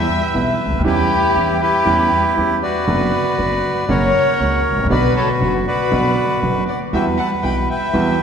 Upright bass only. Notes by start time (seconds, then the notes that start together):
0.35 B1
0.66 C#2
0.73 D2
0.79 D#2
0.85 E2
1.36 E2
1.87 E2
2.38 E2
2.88 F#1
3.38 F#1
3.89 F#1
4.40 C#2
4.72 G#1
4.78 A1
4.85 A#1
4.91 B1
5.41 F#1
5.92 B1
6.42 F#1
6.93 E2
7.44 B1
7.94 E2